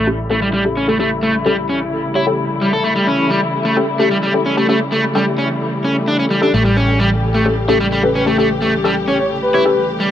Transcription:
Already playing: fingered electric bass A1, string section C#3 E3 G3 A3 E4
0.07 synth stab C#4 G4 A4
0.30 overdriven electric guitar A3, synth stab C#4 G4 A4
0.42 overdriven electric guitar G3
0.53 overdriven electric guitar G3
0.65 synth stab C#4 G4 A4
0.77 overdriven electric guitar C#4
0.88 overdriven electric guitar A3, synth stab C#4 G4 A4
0.99 overdriven electric guitar A3, synth stab C#4 G4 A4
1.23 overdriven electric guitar A3
1.46 overdriven electric guitar G3, synth stab C#4 G4 A4
1.69 overdriven electric guitar C#4
2.15 synth stab C#4 G4 C#5, overdriven electric guitar E4
2.27 synth stab C#4 G4 A4
2.61 overdriven electric guitar G3
2.73 overdriven electric guitar A4
2.84 overdriven electric guitar A3
2.96 overdriven electric guitar G3
3.07 overdriven electric guitar C#4
3.30 overdriven electric guitar G3
3.65 overdriven electric guitar A3
3.77 synth stab C#4 G4 A4
3.99 overdriven electric guitar A3, synth stab C#4 G4 A4
4.11 overdriven electric guitar G3
4.23 overdriven electric guitar G3
4.34 synth stab C#4 G4 A4
4.46 overdriven electric guitar C#4
4.57 overdriven electric guitar A3, synth stab C#4 G4 A4
4.69 overdriven electric guitar A3, synth stab C#4 G4 A4
4.92 overdriven electric guitar A3
5.15 overdriven electric guitar G3, synth stab C#4 G4 A4
5.38 overdriven electric guitar C#4
5.84 overdriven electric guitar C#4
6.08 overdriven electric guitar D4
6.19 overdriven electric guitar C#4
6.31 overdriven electric guitar G3
6.42 synth stab C#4 G4 A4, overdriven electric guitar D4
6.54 fingered electric bass A1, overdriven electric guitar A3, string section G4
6.65 overdriven electric guitar G3
6.77 overdriven electric guitar C#4
6.99 overdriven electric guitar G3
7.34 overdriven electric guitar A3
7.46 synth stab C#4 G4 A4
7.68 overdriven electric guitar A3, synth stab C#4 G4 A4
7.80 overdriven electric guitar G3
7.92 overdriven electric guitar G3
8.03 synth stab C#4 G4 A4, soft synth lead B4
8.15 overdriven electric guitar C#4, soft synth lead B4
8.26 overdriven electric guitar A3, synth stab C#4 G4 A4
8.38 overdriven electric guitar A3, synth stab C#4 G4 A4
8.62 overdriven electric guitar A3
8.84 overdriven electric guitar G3, synth stab C#4 G4 A4
9.07 overdriven electric guitar C#4, soft synth lead C#5
9.19 soft synth lead C#5
9.42 soft synth lead B4
9.54 synth stab C#4 G4 C#5, overdriven electric guitar E4
9.65 synth stab C#4 G4 A4
10.00 overdriven electric guitar G3

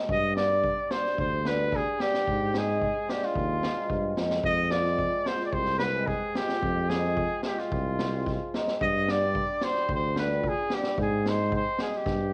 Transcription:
Already playing: hammered dulcimer G#3
0.09 tuba G2, cornet D#5, kick
0.35 hammered dulcimer B3 D4, cornet D5, snare
0.50 hammered dulcimer G3 B3 D4
0.64 kick
0.91 hammered dulcimer G3 B3 D4, cornet C5, snare
1.05 snare
1.18 tuba D2, cornet C5, kick
1.45 hammered dulcimer B3 D4, cornet B4, snare
1.58 hammered dulcimer G3 B3 D4
1.72 cornet G#4, kick, snare
1.98 hammered dulcimer G3 B3 D4, cornet G4, snare
2.14 snare
2.27 tuba G#2, kick
2.52 hammered dulcimer C4 D#4, snare
2.58 cornet G#4
2.67 hammered dulcimer G#3 C4 D#4
2.82 kick
3.07 hammered dulcimer G#3 C4 D4, cornet G4, snare
3.22 cornet F4, snare
3.35 tuba D#2, kick
3.61 hammered dulcimer C4 F4, snare
3.74 hammered dulcimer G#3 C4 D#4
3.89 tuba G2, kick
4.16 tuba F2, hammered dulcimer G#3 C4 D#4, snare
4.30 snare
4.43 tuba F2, cornet D#5, kick
4.70 hammered dulcimer C4 F4, cornet D5, snare
4.84 hammered dulcimer G#3 C4 F4, snare
4.98 kick
5.26 hammered dulcimer G#3 C4 F4, cornet C5, snare
5.39 snare
5.46 cornet D5
5.53 tuba C2, cornet C5, kick
5.65 snare
5.78 hammered dulcimer C4, cornet B4, snare
5.83 hammered dulcimer G4
5.95 hammered dulcimer G#3 C4 G#4
6.07 cornet G#4, kick
6.35 hammered dulcimer G#3 C4 F4, cornet G4, snare
6.49 snare
6.62 tuba F2, kick
6.89 hammered dulcimer C4 D#4, cornet G#4, snare
7.05 hammered dulcimer G#3 C4 F4
7.17 kick
7.43 hammered dulcimer G#3 C4 F4, cornet G4, snare
7.58 cornet F4, snare
7.72 tuba C2, kick
7.99 hammered dulcimer C4 F4, snare
8.15 hammered dulcimer G#3 C4 F4
8.26 kick, snare
8.54 hammered dulcimer G#3 C4 D#4, snare
8.68 snare
8.81 tuba G2, cornet D#5, kick
9.08 hammered dulcimer D4 G4, cornet D5, snare
9.22 hammered dulcimer B3 D4 G4
9.35 kick
9.61 hammered dulcimer B3 D4 G4, cornet C5, snare
9.75 snare
9.89 tuba D2, kick
9.94 cornet C5
10.16 hammered dulcimer D4 G4, cornet B4, snare
10.32 hammered dulcimer B3 D4 F4
10.44 kick
10.48 cornet G#4
10.70 hammered dulcimer B3 D4 G4, cornet G4, snare
10.83 snare
10.98 tuba G#2, cornet G#4, kick
11.26 hammered dulcimer D#4 G#4, cornet C5, snare
11.40 hammered dulcimer C4 D#4 G#4
11.52 cornet C5, kick
11.78 hammered dulcimer C4 D#4 G#4, cornet G#4, snare
11.93 cornet G4, snare
12.06 tuba G2, kick, snare

